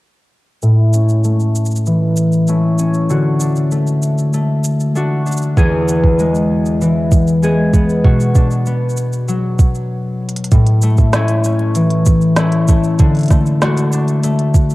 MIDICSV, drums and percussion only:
0, 0, Header, 1, 2, 480
1, 0, Start_track
1, 0, Key_signature, 3, "major"
1, 0, Tempo, 618557
1, 486, Time_signature, 4, 2, 24, 8
1, 11444, End_track
2, 0, Start_track
2, 0, Title_t, "Drums"
2, 483, Note_on_c, 9, 82, 35
2, 561, Note_off_c, 9, 82, 0
2, 724, Note_on_c, 9, 82, 58
2, 802, Note_off_c, 9, 82, 0
2, 846, Note_on_c, 9, 82, 28
2, 923, Note_off_c, 9, 82, 0
2, 963, Note_on_c, 9, 82, 37
2, 1041, Note_off_c, 9, 82, 0
2, 1086, Note_on_c, 9, 82, 26
2, 1163, Note_off_c, 9, 82, 0
2, 1206, Note_on_c, 9, 82, 54
2, 1284, Note_off_c, 9, 82, 0
2, 1284, Note_on_c, 9, 82, 45
2, 1326, Note_off_c, 9, 82, 0
2, 1326, Note_on_c, 9, 82, 26
2, 1364, Note_off_c, 9, 82, 0
2, 1364, Note_on_c, 9, 82, 36
2, 1442, Note_off_c, 9, 82, 0
2, 1444, Note_on_c, 9, 82, 37
2, 1522, Note_off_c, 9, 82, 0
2, 1680, Note_on_c, 9, 82, 70
2, 1758, Note_off_c, 9, 82, 0
2, 1802, Note_on_c, 9, 82, 26
2, 1880, Note_off_c, 9, 82, 0
2, 1920, Note_on_c, 9, 82, 36
2, 1998, Note_off_c, 9, 82, 0
2, 2161, Note_on_c, 9, 82, 68
2, 2239, Note_off_c, 9, 82, 0
2, 2281, Note_on_c, 9, 82, 27
2, 2359, Note_off_c, 9, 82, 0
2, 2404, Note_on_c, 9, 82, 38
2, 2481, Note_off_c, 9, 82, 0
2, 2639, Note_on_c, 9, 82, 64
2, 2717, Note_off_c, 9, 82, 0
2, 2763, Note_on_c, 9, 82, 30
2, 2840, Note_off_c, 9, 82, 0
2, 2883, Note_on_c, 9, 82, 42
2, 2960, Note_off_c, 9, 82, 0
2, 3004, Note_on_c, 9, 82, 28
2, 3082, Note_off_c, 9, 82, 0
2, 3123, Note_on_c, 9, 82, 62
2, 3201, Note_off_c, 9, 82, 0
2, 3246, Note_on_c, 9, 82, 27
2, 3324, Note_off_c, 9, 82, 0
2, 3363, Note_on_c, 9, 82, 43
2, 3441, Note_off_c, 9, 82, 0
2, 3601, Note_on_c, 9, 82, 75
2, 3679, Note_off_c, 9, 82, 0
2, 3726, Note_on_c, 9, 82, 30
2, 3804, Note_off_c, 9, 82, 0
2, 3847, Note_on_c, 9, 82, 37
2, 3925, Note_off_c, 9, 82, 0
2, 4086, Note_on_c, 9, 82, 34
2, 4126, Note_off_c, 9, 82, 0
2, 4126, Note_on_c, 9, 82, 48
2, 4168, Note_off_c, 9, 82, 0
2, 4168, Note_on_c, 9, 82, 59
2, 4206, Note_off_c, 9, 82, 0
2, 4206, Note_on_c, 9, 82, 27
2, 4283, Note_off_c, 9, 82, 0
2, 4323, Note_on_c, 9, 36, 106
2, 4327, Note_on_c, 9, 82, 39
2, 4401, Note_off_c, 9, 36, 0
2, 4404, Note_off_c, 9, 82, 0
2, 4565, Note_on_c, 9, 82, 68
2, 4643, Note_off_c, 9, 82, 0
2, 4684, Note_on_c, 9, 36, 56
2, 4761, Note_off_c, 9, 36, 0
2, 4804, Note_on_c, 9, 82, 42
2, 4882, Note_off_c, 9, 82, 0
2, 4927, Note_on_c, 9, 82, 30
2, 5004, Note_off_c, 9, 82, 0
2, 5166, Note_on_c, 9, 82, 27
2, 5243, Note_off_c, 9, 82, 0
2, 5288, Note_on_c, 9, 82, 42
2, 5365, Note_off_c, 9, 82, 0
2, 5524, Note_on_c, 9, 36, 89
2, 5524, Note_on_c, 9, 82, 77
2, 5601, Note_off_c, 9, 36, 0
2, 5601, Note_off_c, 9, 82, 0
2, 5646, Note_on_c, 9, 82, 30
2, 5723, Note_off_c, 9, 82, 0
2, 5766, Note_on_c, 9, 82, 40
2, 5843, Note_off_c, 9, 82, 0
2, 6003, Note_on_c, 9, 36, 97
2, 6005, Note_on_c, 9, 82, 75
2, 6081, Note_off_c, 9, 36, 0
2, 6083, Note_off_c, 9, 82, 0
2, 6126, Note_on_c, 9, 82, 31
2, 6204, Note_off_c, 9, 82, 0
2, 6243, Note_on_c, 9, 36, 104
2, 6321, Note_off_c, 9, 36, 0
2, 6365, Note_on_c, 9, 82, 42
2, 6443, Note_off_c, 9, 82, 0
2, 6482, Note_on_c, 9, 82, 70
2, 6483, Note_on_c, 9, 36, 101
2, 6559, Note_off_c, 9, 82, 0
2, 6561, Note_off_c, 9, 36, 0
2, 6603, Note_on_c, 9, 82, 31
2, 6680, Note_off_c, 9, 82, 0
2, 6721, Note_on_c, 9, 82, 43
2, 6799, Note_off_c, 9, 82, 0
2, 6902, Note_on_c, 9, 82, 31
2, 6959, Note_off_c, 9, 82, 0
2, 6959, Note_on_c, 9, 82, 67
2, 7037, Note_off_c, 9, 82, 0
2, 7082, Note_on_c, 9, 82, 29
2, 7160, Note_off_c, 9, 82, 0
2, 7205, Note_on_c, 9, 82, 40
2, 7282, Note_off_c, 9, 82, 0
2, 7442, Note_on_c, 9, 36, 100
2, 7442, Note_on_c, 9, 82, 82
2, 7520, Note_off_c, 9, 36, 0
2, 7520, Note_off_c, 9, 82, 0
2, 7565, Note_on_c, 9, 82, 29
2, 7642, Note_off_c, 9, 82, 0
2, 7983, Note_on_c, 9, 42, 59
2, 8042, Note_off_c, 9, 42, 0
2, 8042, Note_on_c, 9, 42, 66
2, 8103, Note_off_c, 9, 42, 0
2, 8103, Note_on_c, 9, 42, 72
2, 8161, Note_off_c, 9, 42, 0
2, 8161, Note_on_c, 9, 42, 62
2, 8161, Note_on_c, 9, 82, 40
2, 8162, Note_on_c, 9, 36, 107
2, 8238, Note_off_c, 9, 42, 0
2, 8238, Note_off_c, 9, 82, 0
2, 8240, Note_off_c, 9, 36, 0
2, 8276, Note_on_c, 9, 42, 42
2, 8354, Note_off_c, 9, 42, 0
2, 8395, Note_on_c, 9, 82, 63
2, 8473, Note_off_c, 9, 82, 0
2, 8516, Note_on_c, 9, 82, 33
2, 8523, Note_on_c, 9, 36, 55
2, 8593, Note_off_c, 9, 82, 0
2, 8601, Note_off_c, 9, 36, 0
2, 8638, Note_on_c, 9, 38, 94
2, 8638, Note_on_c, 9, 42, 66
2, 8638, Note_on_c, 9, 82, 39
2, 8715, Note_off_c, 9, 38, 0
2, 8715, Note_off_c, 9, 42, 0
2, 8715, Note_off_c, 9, 82, 0
2, 8755, Note_on_c, 9, 42, 40
2, 8755, Note_on_c, 9, 82, 28
2, 8832, Note_off_c, 9, 42, 0
2, 8832, Note_off_c, 9, 82, 0
2, 8879, Note_on_c, 9, 82, 60
2, 8957, Note_off_c, 9, 82, 0
2, 8996, Note_on_c, 9, 42, 29
2, 9074, Note_off_c, 9, 42, 0
2, 9119, Note_on_c, 9, 42, 64
2, 9119, Note_on_c, 9, 82, 42
2, 9196, Note_off_c, 9, 42, 0
2, 9196, Note_off_c, 9, 82, 0
2, 9238, Note_on_c, 9, 42, 40
2, 9316, Note_off_c, 9, 42, 0
2, 9357, Note_on_c, 9, 82, 81
2, 9363, Note_on_c, 9, 36, 87
2, 9434, Note_off_c, 9, 82, 0
2, 9441, Note_off_c, 9, 36, 0
2, 9478, Note_on_c, 9, 82, 29
2, 9556, Note_off_c, 9, 82, 0
2, 9594, Note_on_c, 9, 38, 96
2, 9594, Note_on_c, 9, 42, 62
2, 9594, Note_on_c, 9, 82, 42
2, 9672, Note_off_c, 9, 38, 0
2, 9672, Note_off_c, 9, 42, 0
2, 9672, Note_off_c, 9, 82, 0
2, 9715, Note_on_c, 9, 42, 41
2, 9792, Note_off_c, 9, 42, 0
2, 9839, Note_on_c, 9, 82, 72
2, 9844, Note_on_c, 9, 36, 98
2, 9916, Note_off_c, 9, 82, 0
2, 9922, Note_off_c, 9, 36, 0
2, 9961, Note_on_c, 9, 82, 31
2, 10039, Note_off_c, 9, 82, 0
2, 10079, Note_on_c, 9, 42, 60
2, 10079, Note_on_c, 9, 82, 45
2, 10084, Note_on_c, 9, 36, 111
2, 10157, Note_off_c, 9, 42, 0
2, 10157, Note_off_c, 9, 82, 0
2, 10162, Note_off_c, 9, 36, 0
2, 10202, Note_on_c, 9, 42, 18
2, 10218, Note_off_c, 9, 42, 0
2, 10218, Note_on_c, 9, 42, 21
2, 10234, Note_off_c, 9, 42, 0
2, 10234, Note_on_c, 9, 42, 25
2, 10249, Note_off_c, 9, 42, 0
2, 10249, Note_on_c, 9, 42, 28
2, 10268, Note_off_c, 9, 42, 0
2, 10268, Note_on_c, 9, 42, 30
2, 10288, Note_off_c, 9, 42, 0
2, 10288, Note_on_c, 9, 42, 34
2, 10306, Note_off_c, 9, 42, 0
2, 10306, Note_on_c, 9, 42, 37
2, 10324, Note_on_c, 9, 36, 97
2, 10326, Note_on_c, 9, 38, 28
2, 10326, Note_on_c, 9, 82, 68
2, 10383, Note_off_c, 9, 42, 0
2, 10402, Note_off_c, 9, 36, 0
2, 10403, Note_off_c, 9, 38, 0
2, 10403, Note_off_c, 9, 82, 0
2, 10446, Note_on_c, 9, 82, 33
2, 10523, Note_off_c, 9, 82, 0
2, 10567, Note_on_c, 9, 38, 102
2, 10567, Note_on_c, 9, 42, 61
2, 10567, Note_on_c, 9, 82, 45
2, 10645, Note_off_c, 9, 38, 0
2, 10645, Note_off_c, 9, 42, 0
2, 10645, Note_off_c, 9, 82, 0
2, 10688, Note_on_c, 9, 42, 43
2, 10688, Note_on_c, 9, 82, 31
2, 10766, Note_off_c, 9, 42, 0
2, 10766, Note_off_c, 9, 82, 0
2, 10805, Note_on_c, 9, 82, 65
2, 10882, Note_off_c, 9, 82, 0
2, 10925, Note_on_c, 9, 42, 26
2, 10925, Note_on_c, 9, 82, 30
2, 11003, Note_off_c, 9, 42, 0
2, 11003, Note_off_c, 9, 82, 0
2, 11045, Note_on_c, 9, 42, 63
2, 11045, Note_on_c, 9, 82, 43
2, 11123, Note_off_c, 9, 42, 0
2, 11123, Note_off_c, 9, 82, 0
2, 11165, Note_on_c, 9, 42, 38
2, 11243, Note_off_c, 9, 42, 0
2, 11285, Note_on_c, 9, 36, 102
2, 11287, Note_on_c, 9, 82, 77
2, 11363, Note_off_c, 9, 36, 0
2, 11364, Note_off_c, 9, 82, 0
2, 11406, Note_on_c, 9, 82, 30
2, 11444, Note_off_c, 9, 82, 0
2, 11444, End_track
0, 0, End_of_file